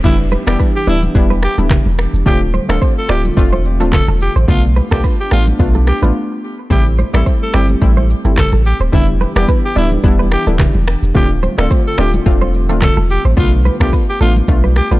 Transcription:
Already playing: downlifter
0.04 E1 E3 G3 B3 D4 E4 G4, kick, low conga, shaker
0.32 B4, high conga, shaker
0.47 E1 G3 B3 D4 E4 G4 D5, finger snap, cross-stick, shaker
0.59 B4, kick, shaker
0.76 G4
0.87 D1 G3 B3 D4 E4 D5, shaker
1.02 high conga, shaker
1.15 E1 G3 B3 D4 E4, kick, shaker
1.30 B4, high conga
1.43 G4, finger snap, cross-stick, shaker
1.58 D1 G3 B3 D4 E4 A4, high conga, shaker
1.70 G4, finger snap, kick, cross-stick, clap, low conga, shaker
1.85 E1, high conga
1.98 finger snap, cross-stick, shaker
2.14 E1, shaker
2.26 D1 D3 A3 C4 D4 F4 G4, kick, low conga, shaker
2.54 C5, high conga, shaker
2.69 D1 A3 C4 D4 F4 A4 D5, finger snap, cross-stick, shaker
2.82 C5, kick, shaker
2.98 A4
3.09 D1 A3 C4 D4 F4 G4 D5, finger snap, cross-stick, shaker
3.24 high conga, shaker
3.37 E1 A3 C4 D4 F4, kick, shaker
3.53 C5, high conga
3.65 shaker
3.80 D1 A3 C4 D4 F4 A4, high conga, shaker
3.93 A4, finger snap, kick, cross-stick, clap, low conga, shaker
4.08 E1 A4, high conga
4.21 G4, shaker
4.36 A1 C5, shaker
4.48 B1 A3 B3 D4 F4, kick, low conga, shaker
4.76 B4, high conga, shaker
4.91 B1 A3 B3 D4 F4 G4 A4, finger snap, kick, cross-stick, shaker
5.04 B4, kick, shaker
5.21 G4
5.31 A1 A3 B3 D4 F4 G4, finger snap, cross-stick, open hi-hat, shaker
5.47 high conga, shaker
5.59 B1 A3 B3 D4 F4, kick, shaker
5.75 A4, high conga
5.87 G4, finger snap, cross-stick, shaker
6.02 A1 A3 B3 D4 F4 B4, high conga, shaker
6.70 A1 G3 A3 C4 E4 G4, kick, low conga, shaker
6.98 C5, high conga, shaker
7.13 A1 G3 A3 C4 E4 A4 D5, finger snap, cross-stick, shaker
7.26 C5, kick, shaker
7.43 A4
7.54 G1 G3 A3 C4 E4 G4 D5, finger snap, cross-stick, shaker
7.69 high conga, shaker
7.81 A1 G3 A3 C4 E4, kick, shaker
7.97 C5, high conga
8.10 shaker
8.25 G1 G3 A3 C4 E4 A4, high conga, shaker
8.37 A4, finger snap, kick, cross-stick, clap, low conga, shaker
8.52 A1 A4, high conga
8.65 G4, shaker
8.80 D1 C5, shaker
8.92 E1 E3 G3 B3 D4 E4, kick, low conga, shaker
9.21 B4, high conga, shaker
9.35 E1 G3 B3 D4 E4 G4 D5, finger snap, cross-stick, shaker
9.48 B4, kick, shaker
9.66 G4
9.76 D1 G3 B3 D4 E4 D5, shaker
9.91 high conga, shaker
10.03 E1 G3 B3 D4 E4, kick, shaker
10.19 B4, high conga
10.32 G4, finger snap, cross-stick, shaker
10.47 D1 G3 B3 D4 E4 A4, high conga, shaker
10.59 G4, finger snap, kick, cross-stick, clap, low conga, shaker
10.74 E1, high conga
10.87 finger snap, cross-stick, shaker
11.03 E1, shaker
11.15 D1 D3 A3 C4 D4 F4 G4, kick, low conga, shaker
11.43 C5, high conga, shaker
11.58 D1 A3 C4 D4 F4 A4 D5, finger snap, cross-stick, shaker
11.70 C5, kick, shaker
11.88 A4
11.98 D1 A3 C4 D4 F4 G4 D5, finger snap, cross-stick, shaker
12.13 high conga, shaker
12.26 E1 A3 C4 D4 F4, kick, shaker
12.42 C5, high conga
12.54 shaker
12.69 D1 A3 C4 D4 F4 A4, high conga, shaker
12.82 A4, finger snap, kick, cross-stick, clap, low conga, shaker
12.97 E1 A4, high conga
13.09 G4, shaker
13.25 A1 C5, shaker
13.37 B1 A3 B3 D4 F4, kick, low conga, shaker
13.65 B4, high conga, shaker
13.80 B1 A3 B3 D4 F4 G4 A4, finger snap, kick, cross-stick, shaker
13.93 B4, kick, shaker
14.10 G4
14.21 A1 A3 B3 D4 F4 A4, open hi-hat, shaker
14.35 high conga, shaker
14.48 B1 A3 B3 D4 F4, kick, shaker
14.64 B4, high conga
14.76 G4, finger snap, cross-stick, shaker
14.91 A1 A3 B3 D4 F4 B4, high conga, shaker

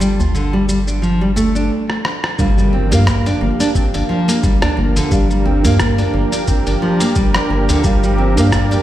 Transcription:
Already playing: G1 F3 D4 F4 G4 A#4 F5 A5
0.00 G3, djembe slap, shaker
0.19 F4, djembe tone, djembe bass, shaker
0.35 D3, shaker
0.53 G3, djembe slap
0.68 G3, djembe tone, shaker
0.87 D4, shaker
1.02 F3, shaker
1.21 G3
1.36 A3, djembe tone, shaker
1.55 D4, shaker
1.90 cross-stick
2.05 cross-stick
2.24 cross-stick
2.38 G1 F3 G3 D4 G4 A#4 F5, kick, impact, shaker
2.58 G3, shaker
2.73 C4
2.91 G2 A#3 D4 G4 A#4 F5, open hi-hat, djembe slap, djembe tone, shaker
3.07 A#3, kick, cross-stick, djembe tone, shaker
3.26 D4, open hi-hat, djembe slap, shaker
3.41 G1 A#3
3.60 D4, open hi-hat, shaker
3.75 C4, kick, shaker
3.94 G1 D4, open hi-hat, djembe slap, shaker
4.09 F3
4.28 A#3, open hi-hat, shaker
4.43 G1 G3, kick, shaker
4.62 D4, cross-stick, open hi-hat, djembe slap, djembe bass, shaker
4.77 G1 A#3
4.96 D3, open hi-hat, djembe tone, shaker
5.10 G1 G3 D4 G4 A#4 F5, kick, shaker
5.30 G3, shaker
5.45 C4, djembe tone
5.63 G2 A#3 D4 G4 A#4 F5, open hi-hat, djembe slap, djembe tone, djembe bass, shaker
5.79 A#3, kick, cross-stick, djembe slap, djembe tone, shaker
5.98 D4, open hi-hat, djembe slap, shaker
6.14 G1 A#3, djembe tone
6.32 D4, open hi-hat, shaker
6.48 C4, kick, shaker
6.67 G1 D4, open hi-hat, shaker
6.82 F3
7.00 A#3, open hi-hat, shaker
7.15 G1 G3, kick, shaker
7.34 D4, cross-stick, open hi-hat, shaker
7.50 G1 A#3
7.69 D3, open hi-hat, djembe bass, shaker
7.84 G1 G3 D4 G4 A#4 F5, kick, shaker
8.03 G3, shaker
8.18 C4
8.36 G2 A#3 D4 G4 A#4, open hi-hat, djembe slap, djembe tone, shaker
8.40 F5
8.52 A#3, kick, cross-stick, djembe tone, shaker
8.71 D4, open hi-hat, djembe slap, shaker

